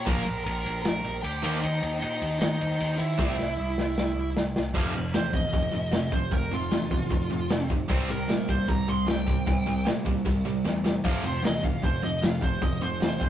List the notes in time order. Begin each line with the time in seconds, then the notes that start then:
0.05 A#1 A#2 F3 A#3 A#4 A#5, kick, crash
0.26 A#1, crash
0.44 A#1 A#4 A#5, crash
0.66 A#1, crash
0.82 A#1 A#4 A#5, snare, crash
1.04 A#1, crash
1.22 D2 G4 G5, crash
1.43 D#2 D#3 A#3 D#4, crash
1.62 D#2 D#4 D#5, crash
1.83 D#2, crash
2.00 A#2 D#4 D#5, crash
2.22 D#2, crash
2.40 D#2 D#4 D#5, snare, crash
2.61 D#2, crash
2.80 D#2, crash
2.98 D#3 E4 E5, crash
3.19 C2 C3 G3 C4, kick, snare
3.39 C2, snare
3.58 C2
3.78 C2, snare
3.98 C2, snare
4.16 C2
4.36 C2, snare
4.55 C2, snare
4.74 F1 F2 C3 F3, kick, crash
4.95 F1 F2 C3
5.14 E2 F2 C3 C5, snare, open hi-hat
5.33 F2 C3 D#5, kick
5.53 F1 F2 C3, kick, open hi-hat
5.72 F1 F2 C3
5.92 F1 F2 C3, snare, open hi-hat
6.12 F2 C3 C5, kick
6.31 F1 F2 C3 A#4, kick, open hi-hat
6.51 F1 F2 C3 F4
6.71 E2 F2 C3, snare, open hi-hat
6.91 F2 C3, kick
7.10 F1 F2 C3, kick, open hi-hat
7.29 F1 F2 C3
7.49 F1 F2 C3, snare, open hi-hat
7.69 F2 C3, kick
7.89 C2 C3 G3 C4, kick, crash
8.09 C2 C3 G3 A#4
8.28 A#2 C3 G3, snare, open hi-hat
8.48 C3 G3 C5, kick
8.68 C2 C3 G3 A#5, kick, open hi-hat
8.88 C2 C3 G3 C6
9.07 C2 C3 G3 G5, snare, open hi-hat
9.27 C3 G3, kick
9.47 C2 C3 G3, kick, open hi-hat
9.67 C2 C3 G3
9.86 A#2 C3 G3, snare, open hi-hat
10.06 C3 G3, kick
10.25 C2 C3 G3, kick, open hi-hat
10.45 C2 C3 G3
10.64 E2 C3 G3, snare
10.85 C3 G3, snare
11.04 F1 F2 C3 F3 F5, kick, crash
11.24 F1 F2 C3 C5
11.43 E2 F2 C3 D#5, snare, open hi-hat
11.63 F2 C3 F5, kick
11.83 F1 F2 C3 C5, kick, open hi-hat
12.03 F1 F2 C3 D#5
12.22 F1 F2 C3 F5, snare, open hi-hat
12.42 F2 C3 C5, kick
12.61 F1 F2 C3 D#5, kick, open hi-hat
12.81 F1 F2 C3 C5
13.02 E2 F2 C3, snare, open hi-hat
13.21 F2 C3, kick